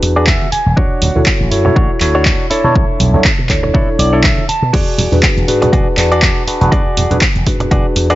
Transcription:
Already playing: D4 F#4 G#4 B4
0.02 E2, muted clean electric guitar stroke, open hi-hat
0.16 D4 F#4 G#4 B4 D5, tambourine
0.27 E5, kick, clap
0.42 high conga
0.52 G#5, muted slap bass stroke, open hi-hat, tambourine
0.66 E1
0.77 D2 D4 F#4 C#5, kick
1.02 D2, open hi-hat, tambourine, low conga
1.15 D2 E4 F#4 A4 C#5, tambourine, low conga
1.26 kick, clap
1.40 A1, high conga
1.51 F#2 E4 F#4 A4 C#5, open hi-hat, tambourine
1.65 E4 F#4 A4 C#5, muted clean electric guitar stroke, tambourine, low conga
1.76 A1 D4 F#4 C#5, kick, tambourine
2.01 D2 E4 F#4 A4 C#5, muted clean electric guitar stroke, clap, open hi-hat
2.15 D4 F#4 C#5, tambourine
2.25 kick, clap
2.50 D4 E4 A4 C#5, muted slap bass stroke, open hi-hat
2.64 B2 D4 E4 A4 C#5, tambourine, high conga
2.75 B1, kick
2.89 muted slap bass stroke
3.00 B1, open hi-hat, tambourine, low conga
3.13 B1 D4 E4 A4 C#5, tambourine, low conga
3.24 kick, clap, tambourine
3.38 B2, high conga
3.49 D2 D4 E4 A4 C#5, kick, clap, open hi-hat
3.63 D4 E4 A4 C#5, muted clean electric guitar stroke, tambourine, low conga
3.74 B2 D4 E4 A4 C#5, kick
3.88 muted slap bass stroke
3.99 B1 D5, muted clean electric guitar stroke, open hi-hat, tambourine
4.13 D4 E4 A4 C#5, tambourine
4.24 E5, kick, clap
4.38 high conga
4.49 A5, muted slap bass stroke, open hi-hat, tambourine
4.62 B2, tambourine
4.73 E2 F#4 G#4 D5, kick, closed hi-hat, crash
4.98 E2, open hi-hat, tambourine, low conga
5.12 E2 D4 F#4 G#4 B4, closed hi-hat, tambourine, low conga
5.23 kick, clap, closed hi-hat
5.37 E1, closed hi-hat, high conga
5.48 G#2 D4 F#4 G#4 B4, open hi-hat, tambourine
5.61 D4 F#4 G#4 B4, muted clean electric guitar stroke, closed hi-hat, tambourine, low conga
5.73 E1 F#4 G#4 D5, kick, closed hi-hat, tambourine
5.97 E2 D4 F#4 G#4 B4, muted clean electric guitar stroke, clap, open hi-hat
6.12 F#4 G#4 D5, closed hi-hat
6.22 kick, clap, closed hi-hat
6.47 D4 F#4 G#4 B4, muted slap bass stroke, open hi-hat, tambourine
6.61 E1 D4 F#4 G#4 B4, closed hi-hat, tambourine, high conga
6.72 F#4 G#4 D5, kick, closed hi-hat
6.86 muted slap bass stroke
6.97 E2, open hi-hat, tambourine, low conga
7.11 E2 D4 F#4 G#4 B4, closed hi-hat, tambourine, low conga
7.21 kick, clap, closed hi-hat
7.35 E1, closed hi-hat, high conga
7.47 G#2 D4 F#4 G#4 B4, kick, open hi-hat, tambourine
7.60 D4 F#4 G#4 B4, muted clean electric guitar stroke, closed hi-hat, tambourine, low conga
7.71 E1 D4 F#4 G#4 B4 D5, kick, closed hi-hat
7.85 muted slap bass stroke
7.96 E2, muted clean electric guitar stroke, open hi-hat, tambourine
8.10 D4 F#4 G#4 B4 D5, closed hi-hat, tambourine

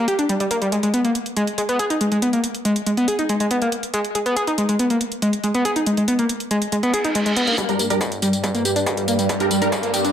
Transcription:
0.08 G4, closed hi-hat
0.19 D4, closed hi-hat
0.29 G3, closed hi-hat
0.40 G3, closed hi-hat
0.51 A#3, closed hi-hat
0.62 G3, closed hi-hat
0.72 G#3, closed hi-hat
0.83 G#3, closed hi-hat
0.94 B3, closed hi-hat
1.05 A#3, closed hi-hat
1.15 closed hi-hat
1.26 closed hi-hat
1.37 G#3, closed hi-hat
1.47 closed hi-hat
1.58 G#3, closed hi-hat
1.69 B3, closed hi-hat
1.79 G#4, closed hi-hat
1.90 D#4, closed hi-hat
2.01 G#3, closed hi-hat
2.12 G#3, closed hi-hat
2.22 B3, closed hi-hat
2.33 A#3, closed hi-hat
2.44 closed hi-hat
2.55 closed hi-hat
2.65 G#3, closed hi-hat
2.76 closed hi-hat
2.86 G#3, closed hi-hat
2.97 B3, closed hi-hat
3.08 G#4, closed hi-hat
3.19 D#4, closed hi-hat
3.29 G#3, closed hi-hat
3.40 G#3, closed hi-hat
3.51 B3, closed hi-hat
3.62 A#3, closed hi-hat
3.72 closed hi-hat
3.83 closed hi-hat
3.94 G#3, closed hi-hat
4.05 closed hi-hat
4.15 G#3, closed hi-hat
4.26 B3, closed hi-hat
4.37 G#4, closed hi-hat
4.47 D#4, closed hi-hat
4.58 G#3, closed hi-hat
4.69 G#3, closed hi-hat
4.79 B3, closed hi-hat
4.90 A#3, closed hi-hat
5.01 closed hi-hat
5.12 closed hi-hat
5.22 G#3, closed hi-hat
5.33 closed hi-hat
5.44 G#3, closed hi-hat
5.54 B3, closed hi-hat
5.65 G#4, closed hi-hat
5.76 D#4, closed hi-hat
5.86 G#3, closed hi-hat
5.97 G#3, closed hi-hat
6.08 B3, closed hi-hat
6.19 A#3, closed hi-hat
6.29 closed hi-hat
6.40 closed hi-hat
6.51 G#3, closed hi-hat
6.62 closed hi-hat
6.72 G#3, closed hi-hat, reverse cymbal
6.83 B3, closed hi-hat
6.94 G#4, closed hi-hat
7.04 D#4, closed hi-hat
7.15 G#3, closed hi-hat
7.26 G#3, closed hi-hat
7.36 B3, closed hi-hat
7.47 A#3, closed hi-hat
7.58 G2 G3, kick, closed hi-hat, tambourine, riser
7.69 G3 D4 A#4, closed hi-hat, tambourine
7.79 A#3, open hi-hat, tambourine
7.90 G3 D4 A#4, closed hi-hat, tambourine
8.01 kick, closed hi-hat, tambourine
8.12 closed hi-hat, tambourine
8.22 G3, open hi-hat, tambourine
8.33 closed hi-hat, tambourine
8.44 G3, kick, closed hi-hat, tambourine
8.54 A#3, closed hi-hat, tambourine
8.65 G4, open hi-hat, tambourine
8.76 D4, closed hi-hat, tambourine
8.86 G3, kick, closed hi-hat, tambourine
8.97 G3, closed hi-hat, tambourine
9.08 A#3, open hi-hat, tambourine
9.19 G3, closed hi-hat, tambourine
9.29 kick, closed hi-hat, tambourine
9.40 G3 D4 A#4, closed hi-hat, tambourine
9.51 G3, open hi-hat, tambourine
9.62 G3 D4 A#4, closed hi-hat, tambourine
9.72 G3, kick, closed hi-hat, tambourine
9.83 A#3, closed hi-hat, tambourine
9.94 G4, open hi-hat, tambourine
10.04 D4, closed hi-hat, tambourine

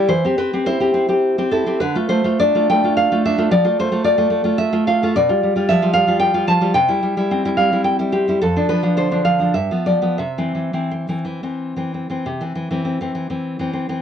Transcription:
0.08 E3 C5
0.24 C4 G4
0.38 C4 B4
0.53 C4 G4
0.66 E4 C5
0.80 C4 G4
0.94 C4
1.09 C4 G4
1.38 C4 G4
1.51 E4 A4
1.66 C4 G4
1.80 D3 B4
1.95 A3 F4
2.09 A3 C5
2.24 A3 F4
2.39 D4 D5
2.55 A3 F4
2.69 A3 G5
2.83 A3 F4
2.96 F5
3.11 A3 F4
3.25 D4 E5
3.38 A3 F4
3.51 F3 D5
3.64 A3 F4
3.79 A3 C5
3.92 A3 F4
4.04 F4 D5
4.18 A3 F4
4.30 A3
4.44 A3 F4
4.58 E5
4.72 A3 F4
4.87 F4 F5
5.02 A3 F4
5.15 B2 D5
5.29 G3 F4
5.43 G3
5.55 G3 F4
5.68 F3 E5
5.82 G3 F4
5.93 G3 F5
6.07 G3 F4
6.19 G5
6.34 G3 F4
6.47 F3 A5
6.61 G3 F4
6.74 C3 G5
6.88 G3 E4
7.03 G3
7.17 G3 E4
7.31 C4
7.45 G3 E4
7.57 G3 F5
7.73 G3 E4
7.84 G5
7.99 G3 E4
8.12 C4 G4
8.28 G3 E4
8.42 F2 A4
8.56 F3 D4
8.69 F3 B4
8.83 F3 D4
8.97 D3 C5
9.11 F3 D4
9.25 F3 F5
9.40 F3 D4
9.54 G2 E5
9.71 F3 B3
9.86 F3 D5
10.02 F3 B3
10.18 C3 E5
10.38 E3 C4
10.55 E3
10.73 E3 C4
10.91 C4
11.09 E3 C4
11.25 E3
11.43 E3 C4
11.77 E3 C4
11.94 C4
12.10 E3 C4
12.26 C3
12.41 E3 C4
12.55 E3
12.71 E3 C4
12.85 C4
13.01 E3 C4
13.15 E3
13.30 E3 C4
13.59 E3 C4
13.73 C4
13.89 E3 C4

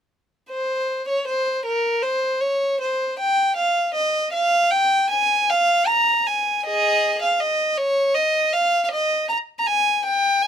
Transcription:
0.50 C5
1.09 C#5
1.27 C5
1.66 A#4
2.03 C5
2.41 C#5
2.80 C5
3.19 G5
3.56 F5
3.94 D#5
4.33 F5
4.71 G5
5.10 G#5
5.50 F5
5.87 A#5
6.27 G#5
6.66 G#4 D#5
7.22 F5
7.40 D#5
7.78 C#5
8.14 D#5
8.53 F5
8.84 F5
8.91 D#5
9.29 A#5
9.59 A#5
9.67 G#5
10.05 G5
10.42 G#5

